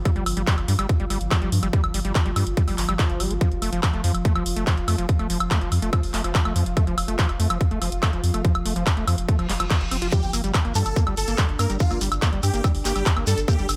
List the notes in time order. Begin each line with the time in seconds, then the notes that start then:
Already playing: F3 F4
0.05 G3, kick, closed hi-hat, high woodblock
0.16 G1 G3, closed hi-hat
0.26 G1, open hi-hat, high woodblock
0.37 G1 G3, closed hi-hat
0.47 G3, kick, clap, closed hi-hat
0.58 G1, closed hi-hat, high woodblock
0.68 G2 G3, open hi-hat
0.79 G1 G3, closed hi-hat, high woodblock
0.89 kick, closed hi-hat
1.00 G1 G3, closed hi-hat
1.10 G1 G3, open hi-hat, high woodblock
1.21 G1, closed hi-hat
1.31 G3, kick, clap, closed hi-hat, high woodblock
1.42 G1 G3, closed hi-hat
1.52 G2, open hi-hat
1.63 G1 G3, closed hi-hat, high woodblock
1.73 G3, kick, closed hi-hat
1.84 G1, closed hi-hat, high woodblock
1.94 G1 G3, open hi-hat
2.05 G1 G3, closed hi-hat
2.15 kick, clap, closed hi-hat, high woodblock
2.26 G1 G3, closed hi-hat
2.36 G2 G3, open hi-hat, high woodblock
2.47 G1, closed hi-hat
2.57 G3, kick, closed hi-hat
2.68 G1 G3, open hi-hat, high woodblock
2.78 G1, clap, open hi-hat
2.89 G1 G3, closed hi-hat, high woodblock
2.99 F3, kick, clap, closed hi-hat
3.10 G1, closed hi-hat
3.20 G1 G3, open hi-hat, high woodblock
3.31 G1 A3, closed hi-hat
3.41 F3, kick, closed hi-hat
3.52 F1, closed hi-hat
3.62 F1 A3, open hi-hat, high woodblock
3.73 F1 F3, closed hi-hat
3.83 kick, clap, closed hi-hat, high woodblock
3.93 F1 A3, closed hi-hat
4.04 F2 F3, open hi-hat
4.15 F1, closed hi-hat, high woodblock
4.25 A3, kick, closed hi-hat
4.35 F1 F3, closed hi-hat, high woodblock
4.46 F1, open hi-hat
4.56 F1 A3, closed hi-hat
4.67 F3, kick, clap, closed hi-hat, high woodblock
4.77 F1, closed hi-hat
4.88 F2 A3, open hi-hat, high woodblock
4.98 F1 F3, closed hi-hat
5.09 kick, closed hi-hat
5.19 F1 A3, closed hi-hat, high woodblock
5.30 F1 F3, open hi-hat
5.40 F1, closed hi-hat, high woodblock
5.51 A3, kick, clap, closed hi-hat
5.61 F1 F3, closed hi-hat
5.72 F2, open hi-hat, high woodblock
5.82 F1 A3, closed hi-hat
5.93 F3, kick, closed hi-hat, high woodblock
6.03 F1, open hi-hat
6.14 F1 A3, clap, open hi-hat
6.24 F1 F3, closed hi-hat, high woodblock
6.35 kick, clap, closed hi-hat
6.45 F1 A3, closed hi-hat, high woodblock
6.56 F2 F3, open hi-hat
6.66 F1, closed hi-hat
6.77 A3, kick, closed hi-hat, high woodblock
6.87 F1 F3, closed hi-hat
6.98 F1, open hi-hat, high woodblock
7.08 F1 A3, closed hi-hat
7.19 F3, kick, clap, closed hi-hat
7.29 F1, closed hi-hat, high woodblock
7.40 F2 A3, open hi-hat
7.50 F1 F3, closed hi-hat, high woodblock
7.61 kick, closed hi-hat
7.71 F1 A3, closed hi-hat
7.82 F1 F3, open hi-hat, high woodblock
7.92 F1, closed hi-hat
8.03 A3, kick, clap, closed hi-hat, high woodblock
8.13 F1 F3, closed hi-hat
8.24 F2, open hi-hat
8.34 F1 A3, closed hi-hat, high woodblock
8.45 F3, kick, closed hi-hat
8.55 F1, closed hi-hat, high woodblock
8.65 F1 A3, open hi-hat
8.76 F1 F3, closed hi-hat
8.87 kick, clap, closed hi-hat, high woodblock
8.97 F1 A3, closed hi-hat
9.07 F2 F3, open hi-hat, high woodblock
9.18 F1, closed hi-hat
9.28 A3, kick, closed hi-hat, reverse cymbal
9.39 F1 F3, closed hi-hat, high woodblock
9.49 F1 G3, clap, open hi-hat
9.60 F1 F3, closed hi-hat, high woodblock
9.70 F3, kick, clap, closed hi-hat
9.81 F1, closed hi-hat
9.91 F1 C4, open hi-hat, high woodblock
10.02 F1 F4, closed hi-hat
10.12 G3 D4 G4, kick, closed hi-hat, shekere
10.23 G1, closed hi-hat, shekere
10.33 G1 A#3, open hi-hat, high woodblock, shekere
10.44 G1 G3, closed hi-hat, shekere
10.54 kick, clap, closed hi-hat, high woodblock, shekere
10.65 G1 A#3, closed hi-hat
10.75 G2 G3 A4, open hi-hat, shekere
10.85 G1, closed hi-hat, high woodblock, shekere
10.96 A#3, kick, closed hi-hat, shekere
11.07 G1 G3, closed hi-hat, high woodblock
11.17 G1 A4, open hi-hat, shekere
11.28 G1 A#3, closed hi-hat, shekere
11.37 G3, kick, clap, closed hi-hat, high woodblock, shekere
11.49 G1, closed hi-hat
11.59 G2 A#3 A#4, open hi-hat, high woodblock, shekere
11.70 G1 G3, closed hi-hat, shekere
11.80 F4, kick, closed hi-hat, shekere
11.91 G1 A#3, closed hi-hat, high woodblock, shekere
12.01 G1 G3, open hi-hat, shekere
12.12 G1, closed hi-hat, high woodblock, shekere
12.22 A#3, kick, clap, closed hi-hat, shekere
12.33 G1 G3, closed hi-hat
12.43 G2 G4, open hi-hat, high woodblock, shekere
12.54 G1 A#3, closed hi-hat, shekere
12.64 G3, kick, closed hi-hat, high woodblock, shekere
12.75 G1, open hi-hat
12.85 G1 A#3 G4, clap, open hi-hat, shekere
12.96 G1 G3, closed hi-hat, high woodblock, shekere
13.06 kick, clap, closed hi-hat, shekere
13.17 G1 A#3, closed hi-hat, high woodblock
13.27 G2 G3 A4, open hi-hat, shekere
13.38 G1, closed hi-hat, shekere
13.48 A#3 G4, kick, closed hi-hat, high woodblock, shekere
13.59 G1 G3, closed hi-hat, shekere
13.68 G1, open hi-hat, high woodblock, shekere